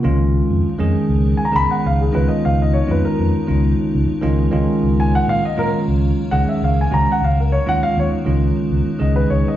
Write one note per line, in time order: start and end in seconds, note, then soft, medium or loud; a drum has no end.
0.03 0.40 C#2 medium
0.03 0.68 D#3 medium
0.03 4.50 F3 medium
0.03 0.68 G#3 medium
0.03 4.50 B3 medium
0.03 0.68 C#4 medium
0.03 4.49 D#4 medium
0.03 0.68 F4 loud
0.03 4.49 A#4 medium
0.03 2.13 C#5 medium
0.50 0.61 F2 medium
0.79 0.91 F2 medium
0.79 1.43 D#3 medium
0.79 1.43 G#3 medium
0.79 1.43 C#4 medium
0.79 1.43 G#4 loud
0.95 muted fingered electric bass stroke soft
1.09 1.33 C#2 medium
1.37 1.46 G#5 medium
1.45 1.54 A#5 medium
1.52 1.67 C#2 medium
1.52 2.04 D#3 medium
1.52 2.04 G#3 medium
1.52 2.05 C#4 medium
1.52 2.05 G#4 medium
1.56 1.70 B5 loud
1.70 1.84 F#5 medium
1.70 muted fingered electric bass stroke soft
1.85 2.08 C#2 medium
1.85 2.00 F5 medium
2.01 2.14 G#4 medium
2.12 2.27 C#2 medium
2.12 2.77 D#3 medium
2.12 2.77 G#3 medium
2.12 2.77 C#4 medium
2.12 2.78 F4 medium
2.12 2.30 B4 medium
2.12 4.51 C#5 medium
2.28 2.43 D#5 medium
2.45 2.81 C#2 medium
2.45 2.60 F5 medium
2.62 2.75 D#5 medium
2.73 2.89 C#5 medium
2.87 3.01 F2 medium
2.87 3.39 D#3 medium
2.87 3.39 G#3 medium
2.87 3.39 C#4 medium
2.87 3.39 F4 medium
2.91 3.04 B4 medium
3.05 3.60 A#4 medium
3.19 3.31 F2 medium
3.34 muted fingered electric bass stroke soft
3.47 3.73 C#2 medium
3.47 4.11 D#3 medium
3.47 4.12 G#3 medium
3.47 4.12 C#4 medium
3.47 4.12 F4 medium
3.95 4.06 C#2 medium
4.11 muted fingered electric bass stroke soft
4.22 4.47 C#2 medium
4.22 4.50 D#3 medium
4.22 4.50 G#3 medium
4.22 4.51 C#4 medium
4.22 4.51 F4 loud
4.51 4.65 C#2 medium
4.51 5.41 D#3 medium
4.51 9.57 F#3 medium
4.51 5.41 G#3 medium
4.51 5.41 C#4 medium
4.51 7.19 C#4 medium
4.51 5.42 F4 medium
4.51 9.57 A#4 medium
4.51 9.57 C#5 medium
4.51 7.19 F5 medium
4.83 5.19 C#2 medium
5.00 5.13 G#5 medium
5.15 5.29 F#5 medium
5.28 5.39 A#2 medium
5.28 5.43 F5 medium
5.45 5.59 D#5 medium
5.56 5.69 A#2 medium
5.56 6.21 D#3 medium
5.56 6.21 G#3 medium
5.56 6.21 C#4 medium
5.56 6.21 F4 medium
5.56 5.67 A#4 medium
5.73 muted fingered electric bass stroke soft
5.88 6.11 C#2 medium
6.31 6.44 C#2 medium
6.31 6.83 D#3 medium
6.31 6.83 G#3 medium
6.31 6.83 C#4 medium
6.31 6.83 G#4 medium
6.31 6.47 F#5 medium
6.48 6.62 E5 medium
6.48 muted fingered electric bass stroke soft
6.62 6.85 C#2 medium
6.62 6.78 F5 medium
6.81 6.93 G#5 medium
6.91 7.04 C#2 medium
6.91 7.21 D#3 medium
6.91 7.21 G#3 medium
6.91 7.22 C#4 medium
6.91 7.22 F#4 medium
6.91 7.08 A#5 medium
7.12 7.24 F#5 medium
7.21 7.57 C#2 medium
7.21 9.57 B3 medium
7.21 9.57 D#4 medium
7.21 7.38 F5 medium
7.40 7.53 A#4 medium
7.52 7.67 C#5 medium
7.66 7.79 D#2 medium
7.66 8.17 D#3 medium
7.66 8.17 G#3 medium
7.66 8.17 C#4 medium
7.66 8.18 F4 medium
7.66 7.82 F#5 medium
7.83 7.97 F5 medium
7.97 8.08 D#2 medium
7.97 8.07 C#5 medium
8.12 muted fingered electric bass stroke soft
8.25 8.50 C#2 medium
8.25 8.89 D#3 medium
8.25 8.90 G#3 medium
8.25 8.90 C#4 medium
8.25 8.90 F4 medium
8.71 8.83 C#2 medium
8.87 muted fingered electric bass stroke soft
8.99 9.24 C#2 medium
8.99 9.51 D#3 medium
8.99 9.51 G#3 medium
8.99 9.52 C#4 medium
8.99 9.51 G#4 medium
8.99 9.16 D#5 medium
9.16 9.30 B4 medium
9.30 9.43 C#2 medium
9.30 9.46 C#5 medium
9.48 9.57 D#5 medium